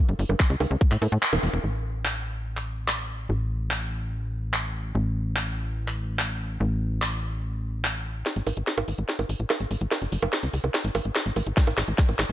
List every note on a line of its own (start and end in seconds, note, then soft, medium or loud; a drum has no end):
0.09 0.14 G1 medium
0.09 closed hi-hat medium
0.19 0.25 G1 loud
0.19 open hi-hat loud
0.29 0.35 G1 medium
0.29 closed hi-hat medium
0.29 high bongo soft
0.40 kick loud
0.40 clap loud
0.40 closed hi-hat medium
0.50 0.56 C#2 medium
0.50 closed hi-hat medium
0.60 0.66 C#2 loud
0.60 open hi-hat loud
0.60 high bongo medium
0.71 0.77 C#2 medium
0.71 closed hi-hat medium
0.81 kick loud
0.81 closed hi-hat medium
0.91 0.97 A2 medium
0.91 clap soft
0.91 closed hi-hat medium
1.02 1.08 A2 loud
1.02 open hi-hat loud
1.02 high bongo soft
1.12 1.18 A2 medium
1.12 closed hi-hat medium
1.22 clap loud
1.22 closed hi-hat medium
1.33 1.39 E1 medium
1.33 closed hi-hat medium
1.33 high bongo medium
1.43 1.49 E1 loud
1.43 open hi-hat loud
1.53 1.59 E1 medium
1.53 closed hi-hat medium
1.64 3.27 A1 medium
2.05 clap loud
2.57 clap soft
2.88 clap loud
3.29 4.93 A1 medium
3.71 clap loud
4.53 clap loud
4.95 6.58 A1 medium
5.36 clap loud
5.88 clap soft
6.19 clap loud
6.60 8.24 A1 medium
7.02 clap loud
7.84 clap loud
8.26 snare medium
8.26 closed hi-hat medium
8.36 8.42 A1 medium
8.36 closed hi-hat medium
8.47 8.52 A1 loud
8.47 open hi-hat loud
8.47 high bongo soft
8.57 8.63 A1 medium
8.57 closed hi-hat medium
8.67 snare medium
8.67 closed hi-hat medium
8.78 8.83 A1 medium
8.78 closed hi-hat medium
8.78 high bongo medium
8.88 8.94 A1 loud
8.88 open hi-hat loud
8.98 9.04 A1 medium
8.98 closed hi-hat medium
9.09 snare medium
9.09 closed hi-hat medium
9.19 9.25 A1 medium
9.19 closed hi-hat medium
9.19 high bongo soft
9.29 9.35 A1 loud
9.29 open hi-hat loud
9.40 9.46 A#1 medium
9.40 closed hi-hat medium
9.50 snare medium
9.50 closed hi-hat medium
9.50 high bongo medium
9.60 9.66 A1 medium
9.60 closed hi-hat medium
9.71 9.77 A1 loud
9.71 open hi-hat loud
9.81 9.87 A1 medium
9.81 closed hi-hat medium
9.91 snare medium
9.91 closed hi-hat medium
9.91 high bongo soft
10.02 10.08 G1 medium
10.02 closed hi-hat soft
10.12 10.18 G1 loud
10.12 open hi-hat loud
10.22 10.28 G1 medium
10.22 closed hi-hat medium
10.22 high bongo medium
10.33 snare medium
10.33 closed hi-hat medium
10.43 10.49 C#2 medium
10.43 closed hi-hat medium
10.53 10.59 C#2 loud
10.53 open hi-hat loud
10.64 10.70 C#2 medium
10.64 closed hi-hat medium
10.64 high bongo soft
10.74 snare medium
10.74 closed hi-hat medium
10.85 10.90 A1 medium
10.85 closed hi-hat medium
10.95 11.01 A1 loud
10.95 open hi-hat loud
10.95 high bongo medium
11.05 11.11 A1 medium
11.05 closed hi-hat medium
11.16 snare medium
11.16 closed hi-hat medium
11.26 11.32 A1 medium
11.26 closed hi-hat medium
11.36 11.42 A1 loud
11.36 open hi-hat loud
11.36 high bongo soft
11.47 11.52 A1 medium
11.47 closed hi-hat medium
11.57 kick loud
11.57 snare medium
11.57 closed hi-hat medium
11.67 11.73 A1 medium
11.67 closed hi-hat medium
11.67 high bongo medium
11.78 11.83 A1 loud
11.78 snare medium
11.78 open hi-hat loud
11.88 11.94 A1 medium
11.88 closed hi-hat medium
11.98 kick loud
11.98 snare medium
11.98 closed hi-hat medium
12.09 12.14 A1 medium
12.09 closed hi-hat soft
12.09 high bongo soft
12.19 12.25 A1 loud
12.19 snare medium
12.19 open hi-hat loud